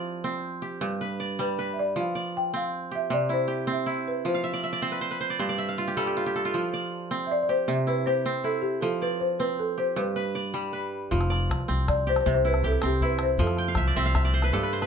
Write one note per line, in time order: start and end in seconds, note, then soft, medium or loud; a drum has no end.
0.00 0.87 F3 medium
0.00 0.24 C4 medium
0.00 0.85 E4 medium
0.00 0.31 G4 medium
0.00 0.39 C5 medium
0.00 0.96 D5 medium
0.24 1.07 C4 medium
0.62 2.03 G4 medium
0.81 2.01 G2 medium
1.01 1.58 B4 medium
1.20 2.15 D5 medium
1.39 2.01 G3 medium
1.39 1.74 B4 medium
1.59 2.60 B4 medium
1.73 1.78 E5 medium
1.79 1.98 D5 medium
1.96 3.16 F3 medium
2.00 2.37 F5 medium
2.15 3.26 D5 medium
2.37 2.55 G5 medium
2.54 3.67 C4 medium
2.54 2.94 F5 medium
2.91 3.47 G4 medium
2.91 3.11 E5 medium
3.10 4.30 C3 medium
3.10 3.32 D5 medium
3.29 3.86 E4 medium
3.29 3.71 C5 medium
3.48 4.89 G4 medium
3.67 4.82 C4 medium
3.72 4.09 E5 medium
3.86 5.43 E4 medium
4.08 4.26 B4 medium
4.25 5.44 F3 medium
4.25 4.99 C5 medium
4.34 4.70 F5 medium
4.44 4.63 E5 medium
4.53 4.72 D5 medium
4.64 5.58 E5 medium
4.73 5.30 D5 medium
4.82 6.62 C4 medium
4.82 5.01 C5 medium
4.92 5.10 B4 medium
5.01 5.20 C5 medium
5.11 5.46 B4 medium
5.21 5.39 C5 medium
5.30 5.49 D5 medium
5.39 6.59 G2 medium
5.39 6.59 C5 medium
5.49 6.60 D5 medium
5.58 5.84 E5 medium
5.69 6.68 F5 medium
5.78 6.16 F4 medium
5.88 6.07 G4 medium
5.97 6.59 G3 medium
5.97 6.35 A4 medium
6.07 6.26 G4 medium
6.17 6.45 F4 medium
6.26 7.49 G4 medium
6.36 7.67 A4 medium
6.45 7.93 F4 medium
6.54 7.73 F3 medium
6.74 7.84 D5 medium
7.11 8.25 C4 medium
7.27 7.31 E5 medium
7.31 7.42 D5 medium
7.43 7.50 D5 medium
7.49 8.06 G4 medium
7.49 7.85 C5 medium
7.68 8.88 C3 medium
7.87 8.44 E4 medium
7.87 8.05 B4 medium
8.06 9.48 G4 medium
8.06 8.45 C5 medium
8.26 9.39 C4 medium
8.44 10.01 E4 medium
8.44 8.62 A4 medium
8.62 8.80 G4 medium
8.81 10.02 F3 medium
8.81 9.02 A4 medium
9.02 9.21 B4 medium
9.02 10.13 D5 medium
9.20 9.40 C5 medium
9.39 10.22 C4 medium
9.39 9.59 B4 medium
9.59 9.79 A4 medium
9.78 11.19 G4 medium
9.78 9.88 C5 medium
9.96 11.16 G2 medium
9.96 10.69 B4 medium
10.16 10.72 B4 medium
10.35 11.30 D5 medium
10.54 11.16 G3 medium
10.73 11.74 B4 medium
11.11 11.46 F1 loud
11.11 12.30 F3 medium
11.11 calabash thump medium
11.21 calabash click soft
11.30 12.41 D5 medium
11.30 calabash click soft
11.49 11.67 C2 medium
11.49 calabash thump medium
11.49 calabash click medium
11.60 calabash click soft
11.68 12.22 C2 medium
11.68 12.82 C4 medium
11.88 12.06 D5 medium
11.88 calabash thump medium
11.88 calabash click medium
12.07 12.64 G4 medium
12.07 12.20 C5 loud
12.16 calabash click soft
12.21 12.32 C5 medium
12.26 12.79 C2 medium
12.26 13.44 C3 medium
12.26 calabash thump medium
12.34 12.46 C5 medium
12.45 13.02 E4 medium
12.45 12.65 B4 medium
12.54 calabash click soft
12.63 14.05 G4 medium
12.63 12.85 A4 medium
12.63 calabash thump medium
12.72 calabash click soft
12.82 13.36 C2 medium
12.82 13.96 C4 medium
12.82 calabash click medium
12.86 13.04 G4 medium
13.01 13.74 E4 medium
13.01 13.22 B4 medium
13.01 calabash thump medium
13.01 calabash click soft
13.19 calabash click medium
13.23 13.41 C5 medium
13.38 13.74 F2 loud
13.38 14.58 F3 medium
13.38 14.12 A4 medium
13.38 calabash thump medium
13.47 calabash click soft
13.57 14.51 G5 medium
13.57 calabash click soft
13.68 14.02 F5 medium
13.75 13.95 C2 medium
13.75 13.96 E5 medium
13.75 calabash thump medium
13.75 calabash click medium
13.84 14.24 D5 medium
13.84 calabash click soft
13.96 14.49 C2 medium
13.96 14.50 C4 medium
13.96 14.15 E5 medium
14.06 14.87 F5 medium
14.15 14.87 E5 medium
14.15 calabash thump medium
14.15 calabash click medium
14.25 14.87 D5 medium
14.34 14.69 C5 medium
14.42 14.63 B4 medium
14.42 calabash click soft
14.52 14.87 G2 medium
14.52 14.87 A4 medium
14.52 calabash thump medium
14.63 14.82 B4 medium
14.63 calabash click soft
14.73 14.87 C5 medium
14.82 14.87 B4 medium
14.82 calabash click soft